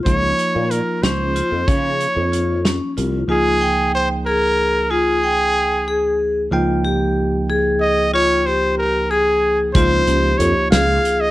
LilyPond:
<<
  \new Staff \with { instrumentName = "Trumpet" } { \time 5/8 \key des \lydian \tempo 4 = 93 des''4 bes'8 c''4 | des''4. r4 | aes'4 c''8 bes'4 | aes'2 r8 |
r2 ees''8 | des''8 c''8 bes'8 aes'8. r16 | c''4 des''8 f''8. ees''16 | }
  \new Staff \with { instrumentName = "Vibraphone" } { \time 5/8 \key des \lydian r4 f'8 des'8 f'8 | r4 f'8 des'8 f'8 | f'8 g''4 aes'4 | f'8 g''4 aes'4 |
f'8 g'4 aes'4 | f'8 g'4 aes'4 | f'8 g'4 aes'4 | }
  \new Staff \with { instrumentName = "Tine electric piano" } { \time 5/8 \key des \lydian <f bes ees' f'>2~ <f bes ees' f'>8~ | <f bes ees' f'>2~ <f bes ees' f'>8 | <des, f bes ees' aes'>2~ <des, f bes ees' aes'>8~ | <des, f bes ees' aes'>2~ <des, f bes ees' aes'>8 |
<des, f bes ees' g''>2~ <des, f bes ees' g''>8~ | <des, f bes ees' g''>2~ <des, f bes ees' g''>8 | <des, f bes ees' f'>2~ <des, f bes ees' f'>8 | }
  \new Staff \with { instrumentName = "Fretless electric bass" } { \clef bass \time 5/8 \key des \lydian des,8 r16 bes,8 r16 des,8. f,16 | des8. f,4~ f,16 c,8 | r2 r8 | r2 r8 |
r2 r8 | r2 r8 | des,8 des,8 f,16 r16 des,8 r8 | }
  \new DrumStaff \with { instrumentName = "Drums" } \drummode { \time 5/8 <hh bd>8 hh8 hh8 <hh sn>8 hh8 | <hh bd>8 hh8 hh8 <hh sn>8 hh8 | r4. r4 | r4. r4 |
r4. r4 | r4. r4 | <hh bd>8 hh8 hh8 <hh sn>8 hh8 | }
>>